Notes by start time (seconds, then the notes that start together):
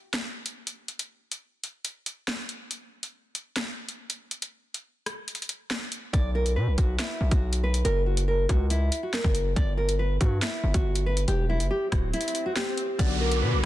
0.13 finger snap, snare, closed hi-hat
0.46 closed hi-hat
0.67 closed hi-hat
0.88 closed hi-hat
0.99 closed hi-hat
1.32 closed hi-hat
1.64 closed hi-hat
1.85 closed hi-hat
2.06 closed hi-hat
2.28 finger snap, snare
2.49 closed hi-hat
2.71 closed hi-hat
3.03 closed hi-hat
3.35 closed hi-hat
3.56 finger snap, snare, closed hi-hat
3.89 closed hi-hat
4.10 closed hi-hat
4.31 closed hi-hat
4.42 closed hi-hat
4.74 closed hi-hat
5.06 cross-stick, closed hi-hat
5.28 closed hi-hat
5.35 closed hi-hat
5.42 closed hi-hat
5.49 closed hi-hat
5.71 finger snap, snare
5.92 closed hi-hat
6.13 B1 D5, kick, closed hi-hat
6.35 A#4
6.46 closed hi-hat
6.56 B2 B4
6.67 B1
6.78 B1 F#4, kick, closed hi-hat
6.99 E4, finger snap, snare, closed hi-hat
7.21 B1
7.31 B1 F#4, kick, closed hi-hat
7.53 closed hi-hat
7.64 B4
7.74 closed hi-hat
7.85 F#1 A#4, closed hi-hat
8.06 F#4
8.17 closed hi-hat
8.28 A#4
8.49 C#2 F#4, kick, closed hi-hat
8.70 E4, closed hi-hat
8.92 closed hi-hat
9.03 F#4
9.13 A#4, finger snap, snare
9.24 F#1, kick
9.35 closed hi-hat
9.56 G1 D5, kick, closed hi-hat
9.77 A#4
9.89 closed hi-hat
9.99 B4
10.21 G2 F#4, kick, closed hi-hat
10.42 E4, finger snap, snare, closed hi-hat
10.63 G1
10.74 G1 F#4, kick, closed hi-hat
10.95 closed hi-hat
11.06 B4
11.17 closed hi-hat
11.28 E1 G4, closed hi-hat, swell
11.49 E4
11.60 F#1, closed hi-hat
11.71 G4
11.92 D1 F#4, kick, cross-stick, closed hi-hat
12.14 E4, closed hi-hat
12.21 closed hi-hat
12.28 closed hi-hat
12.35 closed hi-hat
12.46 F#4
12.56 G4, finger snap, snare
12.78 closed hi-hat
12.98 B1 D3 F#3 B3 F#4 B4 D5 F#5 D6, kick, closed hi-hat, crash, downlifter
13.21 A#4
13.32 closed hi-hat
13.42 B2 B4
13.53 B1
13.62 D3